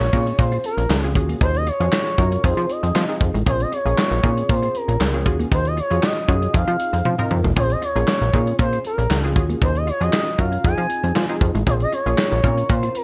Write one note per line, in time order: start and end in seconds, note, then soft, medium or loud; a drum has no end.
0.00 0.10 A#1 loud
0.00 0.41 C#5 loud
0.00 closed hi-hat soft
0.13 0.33 A#2 loud
0.13 0.85 C4 medium
0.13 0.85 C#4 medium
0.13 0.20 D#4 medium
0.13 0.85 F4 medium
0.13 0.85 G#4 medium
0.13 kick medium
0.13 closed hi-hat medium
0.26 0.33 C#4 medium
0.26 closed hi-hat soft
0.39 0.58 A#2 loud
0.39 0.65 C5 loud
0.39 kick loud
0.39 closed hi-hat loud
0.52 0.59 F4 medium
0.52 closed hi-hat soft
0.64 1.13 A#4 medium
0.64 muted clean electric guitar stroke soft
0.64 closed hi-hat medium
0.77 0.87 A#1 medium
0.77 0.84 C#4 medium
0.77 closed hi-hat medium
0.90 1.17 C#2 medium
0.90 0.97 C#4 medium
0.90 snare loud
0.90 clap medium
1.03 1.16 C4 medium
1.03 1.14 C#4 medium
1.03 1.14 F4 medium
1.03 1.15 G#4 medium
1.03 muted clean electric guitar stroke soft
1.03 closed hi-hat soft
1.15 1.35 D#2 medium
1.15 1.67 C#4 medium
1.15 1.67 F4 medium
1.15 1.67 F#4 medium
1.15 1.67 G#4 medium
1.15 kick medium
1.15 closed hi-hat medium
1.29 1.36 A#3 medium
1.29 closed hi-hat medium
1.41 1.71 D#2 loud
1.41 1.49 C#4 medium
1.41 1.58 C5 loud
1.41 kick loud
1.41 closed hi-hat medium
1.54 1.69 D#5 loud
1.54 closed hi-hat soft
1.67 1.74 F4 medium
1.67 2.47 C#5 loud
1.67 closed hi-hat medium
1.80 1.90 F2 medium
1.80 2.11 C#4 medium
1.80 2.11 F4 medium
1.80 2.11 F#4 medium
1.80 2.11 G#4 medium
1.80 muted clean electric guitar stroke soft
1.80 closed hi-hat medium
1.93 muted clean electric guitar stroke soft
1.93 snare loud
1.93 clap medium
2.07 closed hi-hat soft
2.18 2.38 F#2 loud
2.18 2.44 C#4 medium
2.18 2.26 D#4 medium
2.18 2.43 F4 medium
2.18 2.44 F#4 medium
2.18 2.44 A#4 medium
2.18 kick medium
2.18 closed hi-hat medium
2.32 2.38 C#4 medium
2.32 closed hi-hat medium
2.44 2.54 F2 loud
2.44 2.95 C4 medium
2.44 2.95 D#4 medium
2.44 2.95 F4 medium
2.44 2.95 G#4 medium
2.44 2.73 C5 loud
2.44 kick loud
2.44 closed hi-hat loud
2.57 2.66 F3 loud
2.57 2.64 F4 medium
2.57 closed hi-hat soft
2.69 3.22 D#5 medium
2.69 muted clean electric guitar stroke soft
2.69 closed hi-hat medium
2.83 2.92 F2 medium
2.83 2.90 C4 medium
2.83 closed hi-hat medium
2.95 3.05 F3 loud
2.95 3.03 C4 medium
2.95 snare loud
2.95 clap medium
3.08 3.39 C4 medium
3.08 3.39 D#4 medium
3.08 3.39 F4 medium
3.08 3.39 G#4 medium
3.08 closed hi-hat soft
3.21 3.31 F2 loud
3.21 muted clean electric guitar stroke soft
3.21 kick medium
3.21 closed hi-hat medium
3.34 3.43 A1 medium
3.34 3.41 G#3 medium
3.34 closed hi-hat medium
3.46 3.66 A#1 loud
3.46 3.77 C4 medium
3.46 3.77 C#4 medium
3.46 3.54 C#4 medium
3.46 3.77 F4 medium
3.46 3.77 G#4 medium
3.46 3.63 C5 loud
3.46 kick loud
3.46 closed hi-hat loud
3.60 3.73 D#5 loud
3.60 closed hi-hat soft
3.72 3.80 F4 medium
3.72 4.52 C#5 loud
3.72 closed hi-hat medium
3.85 3.95 A#1 medium
3.85 4.16 A#3 medium
3.85 4.16 C#4 medium
3.85 4.16 F4 medium
3.85 4.16 G#4 medium
3.85 muted clean electric guitar stroke soft
3.85 closed hi-hat soft
3.98 muted clean electric guitar stroke soft
3.98 snare loud
3.98 clap loud
4.11 4.20 A#1 loud
4.11 closed hi-hat soft
4.23 4.43 A#2 loud
4.23 4.95 C4 medium
4.23 4.95 C#4 medium
4.23 4.31 D#4 medium
4.23 4.95 F4 medium
4.23 4.95 G#4 medium
4.23 kick medium
4.23 closed hi-hat medium
4.37 4.44 C#4 medium
4.37 closed hi-hat soft
4.49 4.69 A#2 loud
4.49 4.78 C5 loud
4.49 kick loud
4.49 closed hi-hat loud
4.63 4.69 F4 medium
4.63 closed hi-hat soft
4.75 5.27 A#4 medium
4.75 muted clean electric guitar stroke soft
4.75 closed hi-hat medium
4.88 4.97 A#1 medium
4.88 4.95 C#4 medium
4.88 closed hi-hat medium
5.00 5.27 C#2 medium
5.00 5.08 C#4 medium
5.00 snare medium
5.00 clap medium
5.13 5.26 C4 medium
5.13 5.24 C#4 medium
5.13 5.25 F4 medium
5.13 5.25 G#4 medium
5.13 muted clean electric guitar stroke soft
5.13 closed hi-hat soft
5.26 5.45 D#2 loud
5.26 5.77 C#4 medium
5.26 5.77 F4 medium
5.26 5.77 F#4 medium
5.26 5.77 G#4 medium
5.26 kick medium
5.26 closed hi-hat medium
5.39 5.46 A#3 medium
5.39 closed hi-hat medium
5.51 5.81 D#2 loud
5.51 5.59 C#4 medium
5.51 5.69 C5 medium
5.51 kick loud
5.51 closed hi-hat loud
5.65 5.78 D#5 medium
5.65 closed hi-hat soft
5.77 5.85 F4 medium
5.77 6.06 C#5 medium
5.77 closed hi-hat medium
5.90 6.00 F2 medium
5.90 6.21 C#4 medium
5.90 6.21 F4 medium
5.90 6.21 F#4 medium
5.90 6.21 G#4 medium
5.90 muted clean electric guitar stroke soft
5.90 closed hi-hat medium
6.03 6.57 D#5 loud
6.03 snare loud
6.03 clap medium
6.17 closed hi-hat soft
6.28 6.48 F#2 loud
6.28 6.54 C#4 medium
6.28 6.36 D#4 medium
6.28 6.53 F4 medium
6.28 6.54 F#4 medium
6.28 6.53 G#4 medium
6.28 kick medium
6.28 closed hi-hat medium
6.42 6.49 C#4 medium
6.42 closed hi-hat medium
6.53 6.65 F2 loud
6.53 7.05 C4 medium
6.53 7.05 D#4 medium
6.53 7.05 F4 medium
6.53 7.05 G#4 medium
6.53 7.32 F5 loud
6.53 kick loud
6.53 closed hi-hat medium
6.68 6.77 F3 loud
6.68 6.74 F4 medium
6.68 closed hi-hat soft
6.80 muted clean electric guitar stroke soft
6.80 closed hi-hat medium
6.93 7.02 F2 medium
6.93 7.00 C4 medium
6.93 closed hi-hat medium
7.05 7.16 F3 loud
7.05 7.13 C4 medium
7.05 high tom medium
7.18 7.49 C4 medium
7.18 7.49 D#4 medium
7.18 7.49 F4 medium
7.18 7.49 A#4 loud
7.18 mid tom medium
7.31 7.41 F2 loud
7.31 muted clean electric guitar stroke soft
7.31 mid tom medium
7.44 7.54 A1 medium
7.44 7.51 G#3 medium
7.44 floor tom loud
7.56 7.76 A#1 loud
7.56 7.87 C4 medium
7.56 7.87 C#4 medium
7.56 7.64 C#4 medium
7.56 7.87 F4 medium
7.56 7.88 G#4 medium
7.56 7.73 C5 loud
7.56 kick loud
7.56 closed hi-hat medium
7.70 7.83 D#5 loud
7.70 closed hi-hat soft
7.82 7.90 F4 medium
7.82 8.56 C#5 loud
7.82 closed hi-hat medium
7.95 8.05 A#1 medium
7.95 8.26 A#3 medium
7.95 8.26 C#4 medium
7.95 8.26 F4 medium
7.95 8.26 G#4 medium
7.95 muted clean electric guitar stroke soft
7.95 closed hi-hat medium
8.08 snare loud
8.08 clap medium
8.21 8.31 A#1 medium
8.21 closed hi-hat soft
8.33 8.53 A#2 loud
8.33 9.05 C4 medium
8.33 9.05 C#4 medium
8.33 8.41 D#4 medium
8.33 9.05 F4 medium
8.33 9.05 G#4 medium
8.33 kick medium
8.33 closed hi-hat medium
8.47 8.54 C#4 medium
8.47 closed hi-hat medium
8.59 8.79 A#2 loud
8.59 8.84 C5 loud
8.59 kick loud
8.59 closed hi-hat loud
8.73 8.80 F4 medium
8.73 closed hi-hat soft
8.84 9.33 A#4 medium
8.84 muted clean electric guitar stroke soft
8.84 closed hi-hat medium
8.98 9.07 A#1 medium
8.98 9.05 C#4 medium
8.98 closed hi-hat medium
9.10 9.37 C#2 medium
9.10 9.18 C#4 medium
9.10 snare loud
9.10 clap medium
9.23 9.36 C4 medium
9.23 9.34 C#4 medium
9.23 9.35 F4 medium
9.23 9.35 G#4 medium
9.23 muted clean electric guitar stroke soft
9.23 closed hi-hat soft
9.36 9.56 D#2 medium
9.36 9.87 C#4 medium
9.36 9.87 F4 medium
9.36 9.87 F#4 medium
9.36 9.88 G#4 medium
9.36 kick medium
9.36 closed hi-hat medium
9.49 9.56 A#3 medium
9.49 closed hi-hat medium
9.61 9.92 D#2 loud
9.61 9.69 C#4 medium
9.61 9.78 C5 medium
9.61 kick loud
9.61 closed hi-hat medium
9.75 9.88 D#5 medium
9.75 closed hi-hat soft
9.87 9.95 F4 medium
9.87 10.03 C#5 medium
9.87 closed hi-hat medium
10.00 10.10 F2 medium
10.00 10.31 C#4 medium
10.00 10.31 F4 medium
10.00 10.31 F#4 medium
10.00 10.31 G#4 medium
10.00 10.41 D#5 loud
10.00 muted clean electric guitar stroke soft
10.00 closed hi-hat medium
10.13 snare loud
10.13 clap loud
10.27 closed hi-hat soft
10.38 10.58 F#2 loud
10.38 10.64 C#4 medium
10.38 10.46 D#4 medium
10.38 10.63 F4 medium
10.38 10.64 F#4 medium
10.38 10.64 A#4 medium
10.38 10.64 F5 medium
10.38 kick medium
10.38 closed hi-hat medium
10.52 10.59 C#4 medium
10.52 closed hi-hat soft
10.64 10.75 F2 loud
10.64 11.15 C4 medium
10.64 11.16 D#4 medium
10.64 11.16 F4 medium
10.64 11.16 G#4 medium
10.64 11.38 G#5 loud
10.64 kick loud
10.64 closed hi-hat loud
10.78 10.87 F3 loud
10.78 10.84 F4 medium
10.78 closed hi-hat soft
10.90 muted clean electric guitar stroke soft
10.90 closed hi-hat medium
11.03 11.13 F2 medium
11.03 11.10 C4 medium
11.03 closed hi-hat medium
11.15 11.26 F3 medium
11.15 11.23 C4 medium
11.15 snare loud
11.15 clap medium
11.29 11.59 C4 medium
11.29 11.59 D#4 medium
11.29 11.60 F4 medium
11.29 11.60 G#4 medium
11.29 closed hi-hat soft
11.41 11.52 F2 loud
11.41 muted clean electric guitar stroke soft
11.41 kick medium
11.41 closed hi-hat medium
11.55 11.64 A1 medium
11.55 11.62 G#3 medium
11.55 closed hi-hat medium
11.67 11.86 A#1 loud
11.67 11.98 C4 medium
11.67 11.74 C#4 medium
11.67 11.98 C#4 medium
11.67 11.98 F4 medium
11.67 11.98 G#4 medium
11.67 11.74 C5 loud
11.67 kick loud
11.67 closed hi-hat medium
11.80 11.93 D#5 loud
11.80 closed hi-hat soft
11.92 12.00 F4 medium
11.92 12.72 C#5 loud
11.92 closed hi-hat medium
12.06 12.15 A#1 medium
12.06 12.36 A#3 medium
12.06 12.36 C#4 medium
12.06 12.37 F4 medium
12.06 12.37 G#4 medium
12.06 muted clean electric guitar stroke soft
12.06 closed hi-hat soft
12.18 snare loud
12.18 clap medium
12.32 12.41 A#1 medium
12.32 closed hi-hat soft
12.43 12.63 A#2 loud
12.43 13.04 C4 medium
12.43 13.04 C#4 medium
12.43 12.51 D#4 medium
12.43 13.04 F4 medium
12.43 13.04 A#4 medium
12.43 kick medium
12.43 closed hi-hat medium
12.57 12.64 C#4 medium
12.57 closed hi-hat medium
12.69 12.89 A#2 loud
12.69 12.98 C5 loud
12.69 kick loud
12.69 closed hi-hat loud
12.83 12.90 F4 medium
12.83 closed hi-hat soft
12.95 13.04 A#4 medium
12.95 muted clean electric guitar stroke soft
12.95 closed hi-hat medium